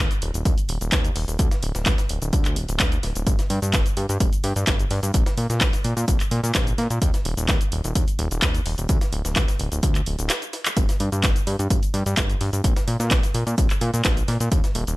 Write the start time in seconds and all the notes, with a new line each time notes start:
0.11 closed hi-hat, cabasa
0.22 D#1, open hi-hat, tambourine
0.34 D#1, closed hi-hat, cabasa
0.45 D#2, kick, closed hi-hat, tambourine, cabasa
0.58 closed hi-hat, cabasa
0.69 D#1, open hi-hat, tambourine
0.81 D#1, closed hi-hat, cabasa
0.92 D#2, kick, snare, clap, closed hi-hat, tambourine, cabasa
1.04 closed hi-hat, cabasa
1.16 D#1, open hi-hat
1.28 D#1, closed hi-hat, cabasa
1.39 D2, kick, closed hi-hat, tambourine, cabasa
1.51 snare, closed hi-hat, cabasa
1.62 D1, open hi-hat, tambourine
1.75 D1, snare, closed hi-hat, cabasa
1.86 D2, kick, snare, clap, closed hi-hat, tambourine, cabasa
1.98 snare, closed hi-hat, cabasa
2.09 D1, open hi-hat, tambourine
2.22 D1, closed hi-hat, cabasa
2.33 D2, kick, closed hi-hat, tambourine, cabasa
2.45 clap, closed hi-hat, cabasa
2.56 D1, open hi-hat, tambourine
2.69 D1, closed hi-hat, cabasa
2.80 D2, kick, snare, clap, closed hi-hat, tambourine, cabasa
2.92 closed hi-hat, cabasa
3.03 D1, snare, open hi-hat, tambourine
3.15 D1, closed hi-hat, cabasa
3.27 G1, kick, closed hi-hat, tambourine, cabasa
3.39 snare, closed hi-hat, cabasa
3.50 G2, open hi-hat, tambourine
3.62 G2, closed hi-hat, cabasa
3.73 G1, kick, snare, clap, closed hi-hat, tambourine, cabasa
3.86 closed hi-hat, cabasa
3.97 G2, open hi-hat, tambourine
4.09 G2, closed hi-hat, cabasa
4.20 G1, kick, closed hi-hat, tambourine, cabasa
4.33 closed hi-hat, cabasa
4.44 G2, open hi-hat, tambourine
4.56 G2, closed hi-hat, cabasa
4.67 G1, kick, snare, clap, closed hi-hat, tambourine, cabasa
4.79 closed hi-hat, cabasa
4.91 G2, open hi-hat
5.03 G2, closed hi-hat, cabasa
5.14 A#1, kick, closed hi-hat, tambourine, cabasa
5.26 snare, closed hi-hat, cabasa
5.37 A#2, open hi-hat, tambourine
5.50 A#2, snare, closed hi-hat, cabasa
5.61 A#1, kick, snare, clap, closed hi-hat, tambourine, cabasa
5.73 snare, closed hi-hat, cabasa
5.84 A#2, open hi-hat, tambourine
5.97 A#2, closed hi-hat, cabasa
6.08 A#1, kick, closed hi-hat, tambourine, cabasa
6.20 clap, closed hi-hat, cabasa
6.31 A#2, open hi-hat, tambourine
6.43 A#2, closed hi-hat, cabasa
6.55 A#1, kick, snare, clap, closed hi-hat, tambourine, cabasa
6.67 closed hi-hat, cabasa
6.78 A#2, snare, open hi-hat, tambourine
6.90 A#2, closed hi-hat, cabasa
7.02 D#2, kick, closed hi-hat, tambourine, cabasa
7.14 snare, closed hi-hat, cabasa
7.25 D#1, open hi-hat, tambourine
7.37 D#1, closed hi-hat, cabasa
7.48 D#2, kick, snare, clap, closed hi-hat, tambourine, cabasa
7.61 closed hi-hat, cabasa
7.72 D#1, open hi-hat, tambourine
7.84 D#1, closed hi-hat, cabasa
7.95 D#2, kick, closed hi-hat, tambourine, cabasa
8.08 closed hi-hat, cabasa
8.19 D#1, open hi-hat, tambourine
8.31 D#1, closed hi-hat, cabasa
8.42 D#2, kick, snare, clap, closed hi-hat, tambourine, cabasa
8.54 closed hi-hat, cabasa
8.66 D#1, open hi-hat
8.78 D#1, closed hi-hat, cabasa
8.89 D2, kick, closed hi-hat, tambourine, cabasa
9.01 snare, closed hi-hat, cabasa
9.13 D1, open hi-hat, tambourine
9.25 D1, snare, closed hi-hat, cabasa
9.36 D2, kick, snare, clap, closed hi-hat, tambourine, cabasa
9.48 snare, closed hi-hat, cabasa
9.59 D1, open hi-hat, tambourine
9.72 D1, closed hi-hat, cabasa
9.83 D2, kick, closed hi-hat, tambourine, cabasa
9.95 clap, closed hi-hat, cabasa
10.06 D1, open hi-hat, tambourine
10.19 D1, closed hi-hat, cabasa
10.30 snare, clap, closed hi-hat, tambourine, cabasa
10.42 closed hi-hat, cabasa
10.53 snare, open hi-hat, tambourine
10.65 clap, closed hi-hat, cabasa
10.77 G1, kick, closed hi-hat, tambourine, cabasa
10.89 snare, closed hi-hat, cabasa
11.00 G2, open hi-hat, tambourine
11.12 G2, closed hi-hat, cabasa
11.23 G1, kick, snare, clap, closed hi-hat, tambourine, cabasa
11.36 closed hi-hat, cabasa
11.47 G2, open hi-hat, tambourine
11.59 G2, closed hi-hat, cabasa
11.70 G1, kick, closed hi-hat, tambourine, cabasa
11.83 closed hi-hat, cabasa
11.94 G2, open hi-hat, tambourine
12.06 G2, closed hi-hat, cabasa
12.17 G1, kick, snare, clap, closed hi-hat, tambourine, cabasa
12.30 closed hi-hat, cabasa
12.41 G2, open hi-hat
12.53 G2, closed hi-hat, cabasa
12.64 A#1, kick, closed hi-hat, tambourine, cabasa
12.76 snare, closed hi-hat, cabasa
12.88 A#2, open hi-hat, tambourine
13.00 A#2, snare, closed hi-hat, cabasa
13.11 A#1, kick, snare, clap, closed hi-hat, tambourine, cabasa
13.23 snare, closed hi-hat, cabasa
13.34 A#2, open hi-hat, tambourine
13.47 A#2, closed hi-hat, cabasa
13.58 A#1, kick, closed hi-hat, tambourine, cabasa
13.70 clap, closed hi-hat, cabasa
13.81 A#2, open hi-hat, tambourine
13.94 A#2, closed hi-hat, cabasa
14.05 A#1, kick, snare, clap, closed hi-hat, tambourine, cabasa
14.17 closed hi-hat, cabasa
14.28 A#2, snare, open hi-hat, tambourine
14.40 A#2, closed hi-hat, cabasa
14.52 D#2, kick, closed hi-hat, tambourine, cabasa
14.64 snare, closed hi-hat, cabasa
14.75 D#1, open hi-hat, tambourine
14.87 D#1, closed hi-hat, cabasa